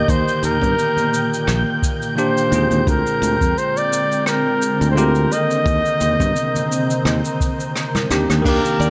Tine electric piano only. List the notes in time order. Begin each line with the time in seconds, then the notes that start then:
Already playing: D3 D#3 A#3 G4 A#4
2.16 D#3 A#3 D4 G4
2.49 D3 G#3 C4
2.54 F4 G#4
4.95 D3 G#3 C4 F4 G4
5.28 D#3 A#3
5.32 D3 A#4
8.09 D#3 A#3 D4 G4
8.42 D#3 A#3
8.49 G4